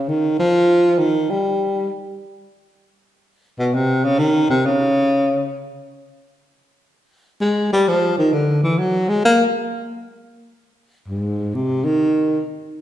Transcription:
0.08 0.38 D#3 medium
0.39 1.00 F3 loud
0.98 1.32 D#3 medium
1.30 1.89 G3 medium
3.59 3.76 B2 medium
3.74 4.06 C3 medium
4.05 4.20 C#3 medium
4.19 4.49 D#3 loud
4.50 4.67 C3 medium
4.66 5.56 C#3 medium
7.41 7.68 G#3 medium
7.73 7.90 G3 medium
7.88 8.17 F3 medium
8.18 8.35 D#3 medium
8.33 8.62 D3 medium
8.63 8.80 E3 medium
8.78 9.10 F#3 medium
9.09 9.22 G#3 medium
9.25 9.42 A#3 medium
11.08 11.56 G#2 medium
11.54 11.86 C3 medium
11.84 12.43 D#3 loud

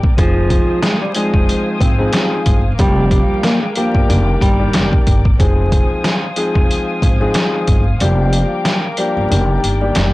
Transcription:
0.00 0.12 G1 medium
0.00 0.15 A#4 medium
0.00 0.16 D5 medium
0.00 0.16 G5 medium
0.00 0.15 D6 medium
0.00 kick loud
0.17 0.59 F1 loud
0.17 0.94 F3 medium
0.17 0.80 F3 loud
0.17 0.94 G#3 medium
0.17 0.94 C4 medium
0.17 0.94 D#4 medium
0.17 0.94 G#4 loud
0.17 2.76 C5 medium
0.17 4.05 F5 medium
0.17 2.76 G#5 medium
0.17 2.76 D#6 medium
0.17 kick loud
0.17 closed hi-hat medium
0.50 kick loud
0.50 closed hi-hat medium
0.83 0.99 G#3 medium
0.83 snare loud
0.83 snare medium
0.83 closed hi-hat medium
1.01 1.14 G3 medium
1.15 1.91 F3 loud
1.15 1.91 G#3 medium
1.15 1.77 G#3 medium
1.15 1.92 C4 medium
1.15 1.92 D#4 medium
1.15 1.92 G#4 loud
1.15 closed hi-hat medium
1.34 1.46 F1 medium
1.34 kick medium
1.49 closed hi-hat medium
1.80 2.07 G#1 medium
1.80 2.75 C4 medium
1.80 kick loud
1.80 closed hi-hat medium
1.98 2.58 F3 medium
1.98 2.58 G#3 medium
1.98 2.58 C4 medium
1.98 2.58 D#4 medium
1.98 2.59 G#4 loud
2.13 snare loud
2.13 snare medium
2.13 closed hi-hat loud
2.46 2.72 G1 medium
2.46 kick loud
2.46 closed hi-hat medium
2.79 3.19 F1 loud
2.79 3.55 F3 loud
2.79 3.55 G3 medium
2.79 3.41 G3 loud
2.79 3.55 A#3 medium
2.79 3.55 D4 medium
2.79 3.55 G4 loud
2.79 5.38 A#4 medium
2.79 5.38 G5 medium
2.79 5.38 D6 medium
2.79 kick loud
2.79 closed hi-hat medium
3.11 kick loud
3.11 closed hi-hat medium
3.43 3.61 A#3 medium
3.43 snare loud
3.43 snare medium
3.43 closed hi-hat medium
3.63 3.75 G#3 medium
3.75 4.09 F3 medium
3.75 4.07 G3 medium
3.75 4.07 A#3 medium
3.75 4.38 A#3 medium
3.75 4.07 D4 medium
3.75 4.08 G4 loud
3.75 closed hi-hat medium
3.95 4.06 G1 medium
3.95 kick medium
4.08 4.36 F1 loud
4.08 4.55 D#3 loud
4.08 4.55 G3 medium
4.08 4.55 A#3 medium
4.08 4.55 D4 medium
4.08 4.56 G4 loud
4.08 5.39 D5 medium
4.08 closed hi-hat medium
4.41 4.68 G1 loud
4.41 4.89 G3 medium
4.41 kick loud
4.41 closed hi-hat medium
4.59 5.19 D#3 medium
4.59 5.19 G3 medium
4.59 5.19 A#3 medium
4.59 5.19 D4 medium
4.59 5.19 G4 loud
4.73 5.01 F1 loud
4.73 snare loud
4.73 snare medium
4.73 closed hi-hat loud
4.93 kick loud
5.07 5.33 G1 medium
5.07 kick medium
5.07 closed hi-hat medium
5.25 kick loud
5.39 5.80 F1 loud
5.39 6.15 F3 medium
5.39 6.15 G#3 medium
5.39 6.16 C4 medium
5.39 6.16 D#4 medium
5.39 6.16 G#4 loud
5.39 7.98 C5 medium
5.39 9.27 F5 medium
5.39 7.98 G#5 medium
5.39 7.98 D#6 medium
5.39 kick loud
5.39 closed hi-hat medium
5.72 kick loud
5.72 closed hi-hat medium
6.04 snare loud
6.04 snare medium
6.04 closed hi-hat medium
6.36 7.13 F3 medium
6.36 7.13 G#3 medium
6.36 7.13 C4 medium
6.36 7.13 D#4 medium
6.36 7.13 G#4 loud
6.36 closed hi-hat medium
6.55 6.67 F1 medium
6.55 kick medium
6.71 closed hi-hat medium
7.02 7.29 G#1 medium
7.02 kick medium
7.02 closed hi-hat medium
7.20 7.80 F3 loud
7.20 7.80 G#3 medium
7.20 7.80 C4 medium
7.20 7.80 D#4 medium
7.20 7.80 G#4 loud
7.34 snare loud
7.34 snare medium
7.34 closed hi-hat loud
7.67 7.94 G1 loud
7.67 kick medium
7.67 closed hi-hat medium
8.00 8.41 F1 loud
8.00 8.77 F3 loud
8.00 8.77 G3 medium
8.00 8.77 A#3 medium
8.00 8.77 D4 medium
8.00 8.77 G4 loud
8.00 10.13 A#4 medium
8.00 9.29 G5 medium
8.00 10.13 D6 medium
8.00 closed hi-hat medium
8.33 closed hi-hat medium
8.65 snare loud
8.65 snare medium
8.65 closed hi-hat medium
8.97 9.31 F3 medium
8.97 9.29 G3 medium
8.97 9.29 A#3 medium
8.97 9.29 D4 medium
8.97 9.29 G4 loud
8.97 closed hi-hat medium
9.17 9.28 G1 medium
9.30 9.57 F1 loud
9.30 9.77 D#3 medium
9.30 9.77 G3 medium
9.30 9.77 A#3 medium
9.30 9.77 D4 medium
9.30 9.77 G4 loud
9.30 10.13 D5 medium
9.30 10.13 G5 medium
9.30 closed hi-hat medium
9.64 9.90 G1 loud
9.64 closed hi-hat medium
9.81 10.13 D#3 medium
9.81 10.13 G3 medium
9.81 10.13 A#3 medium
9.81 10.13 D4 medium
9.81 10.13 G4 loud
9.95 10.13 F1 loud
9.95 snare loud
9.95 snare medium
9.95 closed hi-hat loud

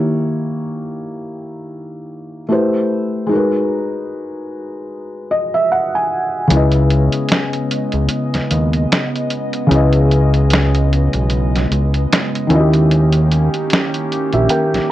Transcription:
0.00 2.44 D#3 medium
0.00 2.45 A#3 medium
0.00 2.46 E4 medium
0.00 2.47 G4 medium
0.00 2.48 C#5 medium
2.49 3.29 A3 medium
2.49 3.30 E4 medium
2.49 3.30 G4 soft
2.49 3.31 B4 medium
2.49 3.31 C5 medium
3.27 6.44 G#3 medium
3.27 6.46 D#4 medium
3.31 6.47 F#4 medium
3.31 6.48 A#4 medium
3.36 6.49 B4 medium
5.31 5.52 D#5 medium
5.54 5.70 E5 medium
5.72 5.92 F#5 medium
5.95 6.47 G#5 medium
6.48 7.10 C#2 loud
6.48 9.65 C#3 medium
6.48 12.46 C#3 medium
6.48 12.46 G#3 medium
6.48 12.46 B3 medium
6.48 9.66 C#4 medium
6.48 12.46 D#5 medium
6.48 closed hi-hat medium
6.52 9.67 E4 medium
6.52 9.68 B4 medium
6.56 9.69 D#5 medium
6.72 closed hi-hat soft
6.90 closed hi-hat medium
7.12 closed hi-hat soft
7.29 finger snap medium
7.29 snare loud
7.29 closed hi-hat medium
7.53 closed hi-hat soft
7.71 closed hi-hat medium
7.92 8.09 C#2 medium
7.92 closed hi-hat soft
8.09 closed hi-hat medium
8.34 8.41 D#2 soft
8.34 snare soft
8.34 closed hi-hat soft
8.51 8.87 D#2 medium
8.51 closed hi-hat medium
8.73 closed hi-hat soft
8.92 finger snap medium
8.92 snare loud
8.92 closed hi-hat medium
9.16 closed hi-hat soft
9.30 closed hi-hat medium
9.53 closed hi-hat soft
9.67 11.09 C#2 loud
9.67 12.44 C#3 medium
9.67 12.45 C#4 medium
9.71 12.47 E4 medium
9.71 12.48 B4 medium
9.71 closed hi-hat medium
9.76 12.49 D#5 medium
9.93 closed hi-hat soft
10.11 closed hi-hat medium
10.34 closed hi-hat soft
10.50 finger snap medium
10.50 snare loud
10.50 closed hi-hat medium
10.75 closed hi-hat soft
10.93 closed hi-hat medium
11.13 11.67 B1 medium
11.13 closed hi-hat soft
11.30 closed hi-hat medium
11.56 snare soft
11.56 closed hi-hat soft
11.71 12.07 C#2 medium
11.71 closed hi-hat medium
11.94 closed hi-hat soft
12.13 finger snap medium
12.13 snare loud
12.13 closed hi-hat loud
12.35 closed hi-hat soft
12.47 13.49 D#2 loud
12.47 14.92 D#3 medium
12.47 14.92 A#3 medium
12.47 14.92 C#4 medium
12.47 14.92 E4 medium
12.47 14.92 G4 medium
12.47 closed hi-hat medium
12.51 14.92 C#4 medium
12.51 12.59 F#4 soft
12.55 14.10 D#5 medium
12.60 14.12 G4 medium
12.74 closed hi-hat soft
12.91 closed hi-hat medium
13.12 closed hi-hat medium
13.32 closed hi-hat medium
13.54 closed hi-hat medium
13.70 finger snap loud
13.70 snare loud
13.70 closed hi-hat medium
13.94 closed hi-hat soft
14.12 closed hi-hat medium
14.33 14.49 A#1 medium
14.33 14.50 G4 medium
14.33 14.50 E5 medium
14.33 closed hi-hat soft
14.49 14.89 A#4 medium
14.49 14.88 G5 medium
14.49 closed hi-hat medium
14.74 14.80 A#1 soft
14.74 snare soft
14.74 closed hi-hat soft

